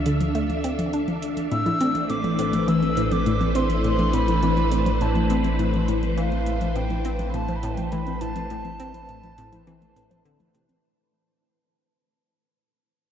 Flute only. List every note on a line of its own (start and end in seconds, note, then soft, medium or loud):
1.52 2.12 E6 loud
2.10 2.70 D6 loud
2.68 3.14 E6 loud
3.12 3.57 D6 loud
3.56 3.84 C6 medium
3.85 4.16 C6 loud
4.14 5.03 B5 loud
5.01 5.60 A5 medium
6.18 6.77 F5 loud
6.76 7.33 G5 loud
7.34 7.57 A5 loud
7.56 7.66 B5 medium
7.65 7.76 A5 medium
7.74 7.85 G5 medium
7.83 7.93 A5 medium
7.92 8.22 B5 loud
8.21 10.25 A5 loud